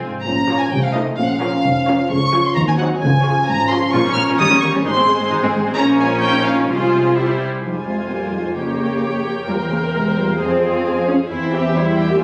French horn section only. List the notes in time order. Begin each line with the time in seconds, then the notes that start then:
0.26 F3 C#4
0.73 A3 C4
1.19 F3 C#4
2.57 F#3 C4
3.01 F3 C#4
4.38 G3
4.86 G#3 C4
5.76 A#3 C#4
6.24 D#4
6.70 G#3 F4
7.15 G3 E4
7.62 G#2
7.84 C3
8.09 A#2
8.31 G#2
8.54 C#3
9.46 A#2
9.69 C#3
9.94 C3
10.16 A#2
10.40 F3
11.08 F3
11.31 E3
11.76 G3
12.09 A#3